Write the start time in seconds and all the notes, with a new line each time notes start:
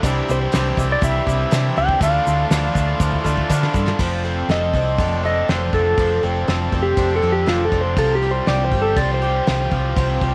0.03 C2 C3 E3 G3 C4 D4 E4 G4 C5 D5 E5, kick, open hi-hat, shaker
0.28 C2 D4 E4 G4 C5, open hi-hat, shaker
0.43 C5
0.52 C2 C3 E3 G3 C4 D4 E4 G4, snare, open hi-hat, shaker
0.77 C2 G3 C4 D4 E4 G4, kick, open hi-hat, shaker
0.92 D5
1.01 C2 G3 D4 E4 G4 E5, kick, open hi-hat, shaker
1.27 C2 G3 C4 D4 E4 G4, kick, open hi-hat, shaker
1.51 C3 E3 G3 C4 D4 E4 G4, snare, open hi-hat, shaker
1.77 C#2 D4 E4 G4 G5, open hi-hat
1.89 kick
2.00 D2 D3 F3 A3 D4 E4 F4 A4 D5 F5, kick, open hi-hat, shaker
2.26 D2 D4 E4 A4, open hi-hat, shaker
2.50 D2 D3 F3 A3 D4 E4 F4 A4, snare, open hi-hat, shaker
2.75 D2 A3 D4 E4 F4 A4, kick, open hi-hat, shaker
3.00 D2 F3 D4 E4 A4, kick, shaker
3.13 kick
3.24 D2 A3 D4 E4 F4 A4, kick, shaker
3.37 kick
3.49 D3 F3 A3 D4 E4 F4 A4, kick, shaker
3.63 snare
3.74 G2 D4 E4 A4, kick, shaker
3.88 snare
3.99 F1 D3 F3 C4 D4 F4 A4 C5, kick, crash
4.24 C4 D4 A4, open hi-hat
4.48 F1 F3 C4 D4 A4 D#5, snare, open hi-hat
4.74 C2 C4 D4 A4, kick, open hi-hat
4.98 F1 F3 C4 D4 A4, kick, open hi-hat
5.23 C4 D4 A4 D#5, open hi-hat
5.48 F1 F3 C4 D4 A4 C5, snare, open hi-hat
5.73 F1 F3 C4 D4 A4, kick, open hi-hat
5.97 F1 F3 C4 D4 A4, kick, open hi-hat
6.22 F1 C4 D4 A4, open hi-hat
6.47 F1 F3 C4 D4 A4, snare, open hi-hat
6.72 F1 C4 D4 A4, kick, open hi-hat
6.83 G4
6.97 F1 F3 C4 D4 A4, kick, open hi-hat
7.16 A4
7.22 F2 C4 D4 A4, open hi-hat
7.32 G4
7.46 F1 F3 C4 D4 F4 A4, snare, open hi-hat
7.65 A4
7.72 F1 F3 C4 D4 A4, kick, open hi-hat
7.81 C5
7.96 C2 C3 F3 C4 F4 G4 A4 C5, kick, open hi-hat
8.15 G4
8.21 G3 C4 F4 G4, open hi-hat
8.31 C5
8.46 C2 F3 C4 F4 G4 D5, snare, open hi-hat
8.65 C5
8.71 G1 G3 C4 F4 G4, kick, open hi-hat
8.82 A4
8.96 C2 C3 F3 C4 F4 G4 D5, kick, open hi-hat
9.14 C5
9.22 C4 F4 G4, open hi-hat
9.47 C2 F3 C4 F4 G4, snare, open hi-hat
9.71 C2 F3 C4 F4 G4, kick, open hi-hat
9.96 C2 C3 F3 C4 F4 G4, kick, open hi-hat
10.21 C2 G3 C4 F4 G4, kick, open hi-hat